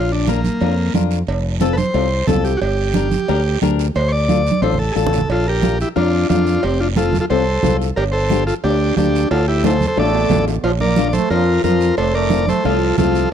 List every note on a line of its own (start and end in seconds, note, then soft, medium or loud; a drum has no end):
0.00 0.48 A#1 medium
0.00 0.11 F4 loud
0.12 0.28 D4 medium
0.28 0.93 A#3 medium
0.28 0.39 D4 medium
0.28 0.40 F4 medium
0.28 0.40 A#4 medium
0.28 high conga medium
0.28 short guiro medium
0.44 high conga medium
0.44 short guiro medium
0.61 0.88 F2 medium
0.61 0.73 D4 medium
0.61 0.73 F4 medium
0.61 0.73 A#4 medium
0.61 cowbell medium
0.61 high conga soft
0.61 long guiro medium
0.94 1.21 F2 loud
0.94 1.18 D4 medium
0.94 1.18 F4 medium
0.94 1.18 A#4 medium
0.94 high conga medium
0.94 short guiro medium
1.11 short guiro medium
1.27 1.82 F1 loud
1.27 cowbell medium
1.27 high conga soft
1.27 long guiro medium
1.60 1.73 C4 medium
1.60 1.73 F4 medium
1.60 1.73 A4 medium
1.60 1.78 A4 loud
1.60 high conga medium
1.60 short guiro medium
1.73 1.76 B4 medium
1.77 2.27 C5 loud
1.77 high conga medium
1.77 short guiro medium
1.94 2.21 C2 loud
1.94 2.06 C4 medium
1.94 2.06 F4 medium
1.94 2.06 A4 medium
1.94 cowbell medium
1.94 high conga soft
1.94 long guiro medium
2.27 2.55 C2 loud
2.27 2.52 C4 medium
2.27 2.52 F4 medium
2.27 2.44 A4 medium
2.27 2.52 A4 medium
2.27 high conga medium
2.27 low conga medium
2.27 low timbale medium
2.27 short guiro medium
2.45 2.60 G4 medium
2.45 short guiro medium
2.57 2.60 F#4 medium
2.57 high conga soft
2.61 3.15 G1 loud
2.61 3.59 G4 loud
2.61 cowbell medium
2.61 long guiro medium
2.94 3.07 D4 medium
2.94 3.07 G4 medium
2.94 3.07 A#4 medium
2.94 high conga loud
2.94 short guiro medium
3.11 high conga medium
3.11 short guiro medium
3.28 3.56 D2 medium
3.28 3.40 D4 medium
3.28 3.41 G4 medium
3.28 3.41 A#4 medium
3.28 cowbell medium
3.28 high conga soft
3.28 long guiro medium
3.62 3.89 D2 loud
3.62 3.85 D4 medium
3.62 3.86 G4 medium
3.62 3.86 A#4 medium
3.62 high conga medium
3.62 short guiro medium
3.79 short guiro medium
3.94 4.49 D2 loud
3.94 4.12 C5 loud
3.94 cowbell loud
3.94 high conga soft
3.94 long guiro medium
4.08 4.11 C#5 medium
4.08 4.61 D5 loud
4.28 4.40 D4 medium
4.28 4.41 F4 medium
4.28 4.41 A4 medium
4.28 high conga medium
4.28 short guiro medium
4.46 short guiro medium
4.51 high conga medium
4.62 4.89 A1 loud
4.62 4.74 D4 medium
4.62 4.74 F4 medium
4.62 4.74 A4 medium
4.62 4.78 C5 medium
4.62 cowbell medium
4.62 long guiro medium
4.74 low conga medium
4.79 4.95 A4 medium
4.92 5.19 D4 medium
4.92 5.19 F4 medium
4.92 4.94 G#4 medium
4.96 5.23 A1 medium
4.96 5.19 A4 medium
4.96 5.29 A4 loud
4.96 short guiro medium
5.06 low conga medium
5.13 short guiro medium
5.18 low conga medium
5.29 5.83 A#1 medium
5.29 5.46 F4 medium
5.29 5.48 A4 medium
5.29 cowbell loud
5.29 high conga soft
5.29 long guiro medium
5.48 5.79 G4 medium
5.48 5.78 A#4 medium
5.63 5.75 D4 medium
5.63 5.75 F4 medium
5.63 5.75 A#4 medium
5.63 high conga medium
5.63 short guiro medium
5.80 5.89 E4 medium
5.80 5.88 G4 medium
5.80 short guiro medium
5.96 6.23 F2 medium
5.96 6.08 D4 medium
5.96 6.28 D4 medium
5.96 6.27 F4 medium
5.96 6.08 F4 medium
5.96 6.08 A#4 medium
5.96 cowbell medium
5.96 high conga soft
5.96 long guiro medium
6.29 6.57 F2 medium
6.29 6.53 D4 medium
6.29 6.61 D4 medium
6.29 6.64 F4 medium
6.29 6.53 F4 medium
6.29 6.53 A#4 medium
6.29 high conga medium
6.29 low timbale medium
6.29 short guiro medium
6.47 short guiro medium
6.63 7.17 F1 loud
6.63 6.79 C4 medium
6.63 6.81 G4 medium
6.63 cowbell loud
6.63 high conga soft
6.63 long guiro medium
6.80 6.88 D4 medium
6.80 6.88 F4 medium
6.96 7.08 C4 medium
6.96 7.09 F4 medium
6.96 7.18 F4 medium
6.96 7.18 A4 medium
6.96 7.09 A4 medium
6.96 high conga loud
6.96 short guiro medium
7.13 high conga medium
7.13 low conga medium
7.13 short guiro medium
7.20 7.26 F4 medium
7.20 7.25 A4 medium
7.30 7.57 C2 medium
7.30 7.42 C4 medium
7.30 7.42 F4 medium
7.30 7.77 A4 medium
7.30 7.42 A4 medium
7.30 7.77 C5 loud
7.30 cowbell medium
7.30 high conga soft
7.30 long guiro medium
7.63 7.90 C2 loud
7.63 7.87 C4 medium
7.63 7.87 F4 medium
7.63 7.87 A4 medium
7.63 high conga medium
7.63 low conga medium
7.63 low timbale medium
7.63 short guiro medium
7.82 short guiro medium
7.96 8.51 G1 medium
7.96 8.05 G4 medium
7.96 8.04 A#4 loud
7.96 cowbell loud
7.96 high conga soft
7.96 long guiro medium
8.12 8.44 A4 medium
8.12 8.44 C5 loud
8.30 8.42 A#3 medium
8.30 8.42 D4 medium
8.30 8.43 G4 medium
8.30 high conga medium
8.30 short guiro medium
8.47 8.54 F4 medium
8.47 8.55 A4 medium
8.47 short guiro medium
8.64 8.91 D2 medium
8.64 8.76 A#3 medium
8.64 8.95 D4 medium
8.64 8.76 D4 medium
8.64 8.95 G4 loud
8.64 8.76 G4 medium
8.64 cowbell medium
8.64 high conga soft
8.64 long guiro medium
8.96 9.24 D2 medium
8.96 9.20 A#3 medium
8.96 9.21 D4 medium
8.96 9.29 D4 medium
8.96 9.28 G4 loud
8.96 9.20 G4 medium
8.96 high conga medium
8.96 short guiro medium
9.15 short guiro medium
9.30 9.84 D2 medium
9.30 9.46 F4 medium
9.30 9.46 A4 loud
9.30 cowbell loud
9.30 high conga soft
9.30 high timbale medium
9.30 long guiro medium
9.48 9.63 E4 medium
9.48 9.65 G4 medium
9.64 9.76 A3 medium
9.64 9.76 D4 medium
9.64 9.76 F4 medium
9.64 9.86 A4 medium
9.64 9.86 C5 loud
9.64 high conga medium
9.64 high timbale loud
9.64 short guiro medium
9.81 high conga medium
9.81 low conga medium
9.81 short guiro medium
9.87 9.98 A4 medium
9.87 9.98 C5 loud
9.97 10.24 A1 medium
9.97 10.09 A3 medium
9.97 10.44 A3 medium
9.97 10.09 D4 medium
9.97 10.09 F4 medium
9.97 10.45 A4 medium
9.97 10.45 D5 loud
9.97 cowbell medium
9.97 low timbale medium
9.97 long guiro medium
10.15 low timbale medium
10.29 10.58 A1 medium
10.29 10.54 A3 medium
10.29 10.54 D4 medium
10.29 10.54 F4 medium
10.29 high conga medium
10.29 low conga medium
10.29 low timbale medium
10.29 short guiro medium
10.48 low timbale medium
10.48 short guiro medium
10.63 11.17 A#1 medium
10.63 10.72 F3 medium
10.63 10.72 F4 medium
10.63 10.71 C5 loud
10.63 cowbell medium
10.63 high conga soft
10.63 long guiro medium
10.80 11.08 A#3 medium
10.80 11.08 A#4 medium
10.80 11.08 D5 loud
10.80 high conga medium
10.96 11.09 A#3 medium
10.96 11.10 D4 medium
10.96 11.10 F4 medium
10.96 high conga medium
10.96 short guiro medium
11.09 11.14 A#3 medium
11.09 11.14 D5 medium
11.13 11.30 A3 medium
11.13 11.29 A4 medium
11.13 11.29 C5 loud
11.13 high conga medium
11.13 short guiro medium
11.30 11.57 F2 medium
11.30 11.63 F3 medium
11.30 11.43 A#3 medium
11.30 11.43 D4 medium
11.30 11.62 F4 medium
11.30 11.43 F4 medium
11.30 11.62 A#4 loud
11.30 cowbell medium
11.30 long guiro medium
11.64 11.91 F2 medium
11.64 11.96 F3 medium
11.64 11.88 A#3 medium
11.64 11.88 D4 medium
11.64 11.95 F4 medium
11.64 11.88 F4 medium
11.64 11.95 A#4 loud
11.64 high conga medium
11.64 short guiro medium
11.81 short guiro medium
11.97 12.51 F1 medium
11.97 12.14 A3 medium
11.97 12.13 A4 medium
11.97 12.15 C5 loud
11.97 cowbell loud
11.97 high conga soft
11.97 long guiro medium
12.15 12.46 A3 medium
12.15 12.46 A#4 medium
12.15 12.49 D5 medium
12.30 12.43 A3 medium
12.30 12.43 C4 medium
12.30 12.43 F4 medium
12.30 high conga medium
12.30 short guiro medium
12.47 12.64 A3 medium
12.47 12.64 A4 medium
12.47 12.66 C5 loud
12.47 high conga medium
12.47 short guiro medium
12.64 12.92 C2 medium
12.64 12.96 F3 medium
12.64 12.76 A3 medium
12.64 12.76 C4 medium
12.64 12.77 F4 medium
12.64 12.96 F4 medium
12.64 12.96 A4 medium
12.64 cowbell medium
12.64 high conga soft
12.64 long guiro medium
12.97 13.25 C2 loud
12.97 13.30 F3 medium
12.97 13.21 A3 medium
12.97 13.22 C4 medium
12.97 13.29 F4 medium
12.97 13.22 F4 medium
12.97 13.29 A4 loud
12.97 high conga medium
12.97 low conga medium
12.97 low timbale medium
12.97 short guiro medium
13.15 short guiro medium